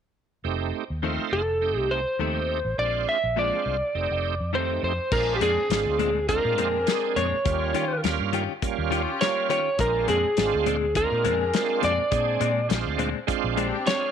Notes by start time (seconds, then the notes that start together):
0.44 F1 A3 C4 D#4 G4
0.90 D#2
1.02 F2 D#3 A3 C4 D#4 F4
1.19 muted fingered electric bass stroke
1.32 F1 A4
1.61 A3 C4 D#4 G4
1.78 C2 G4
1.91 C5
2.19 D#2 F2 D#3 A3 C4 D#4 G4
2.65 A1
2.78 A#1 G#3 C4 D4 F4 D5
3.09 E5
3.24 A#1
3.36 A#2 F3 G#3 C4 D4 F4 D5
3.66 C2
3.95 F1 A3 C4 D#4 G4
4.11 F1
4.40 F2
4.53 F2 D#3 A3 C4 D#4 G4 C5
4.83 F2 C5
4.99 muted fingered electric bass stroke
5.11 A#1 G#3 C4 D4 F4 G#4 A#4, kick, crash
5.36 G4
5.41 F2 A#2 G#3 C4 D4 G#4, closed hi-hat
5.57 muted fingered electric bass stroke
5.70 G#1 G#3 C4 D4 F4, snare, closed hi-hat
5.86 D2
5.99 A#2 G#3 C4 D4, closed hi-hat
6.28 G#3 C4 D4 F4 A#4, kick, closed hi-hat
6.45 A#2
6.58 F2 A#2 G#3 C4 D4 G#4, closed hi-hat
6.86 G#3 C4 D4 G#4, snare, closed hi-hat
7.16 F2 A#2 G#3 C4 D4 C#5, closed hi-hat
7.33 muted fingered electric bass stroke
7.44 D#2 G3 A#3 C#4 F4 G4, kick, closed hi-hat
7.74 D#3 C#4 F4 G4, closed hi-hat
8.03 D#2 G3 A#3 C#4 F4, snare, closed hi-hat
8.20 G2
8.33 D#3 C#4 F4 G4, closed hi-hat
8.62 G3 A#3 C#4 F4, kick, closed hi-hat
8.78 D#2
8.91 D#3 C#4 F4 G4, closed hi-hat
9.21 G3 A#3 C#4 F4 C#5, snare, closed hi-hat
9.49 D#3 C#4 F4 G4 C#5, closed hi-hat
9.78 A#1 G#3 C4 D4 F4 G#4 A#4, kick, closed hi-hat
10.08 F2 A#2 G#3 C4 D4 G#4, closed hi-hat
10.25 muted fingered electric bass stroke
10.37 G#1 G#3 C4 D4 F4, snare, closed hi-hat
10.54 D2
10.66 A#2 G#3 C4 D4, closed hi-hat
10.95 G#3 C4 D4 F4 A#4, kick, closed hi-hat
11.12 A#2
11.24 F2 A#2 G#3 C4 D4 G#4, closed hi-hat
11.54 G#3 C4 D4 F4, snare, closed hi-hat
11.82 F2 A#2 G#3 C4 D4 D5, closed hi-hat
11.99 muted fingered electric bass stroke
12.11 A#2 G#3 C4 D4 G#4, kick, closed hi-hat
12.40 A#2 G#3 C4 D4, closed hi-hat
12.69 A#1 G#3 C4 D4 F4, snare, closed hi-hat
12.86 D2
12.98 A#2 G#3 C4 D4, closed hi-hat
13.27 G#3 C4 D4 F4, kick, closed hi-hat
13.44 A#1
13.57 A#2 G#3 C4 D4 G4, closed hi-hat
13.86 G#3 C4 D4 F4 C#5, snare, closed hi-hat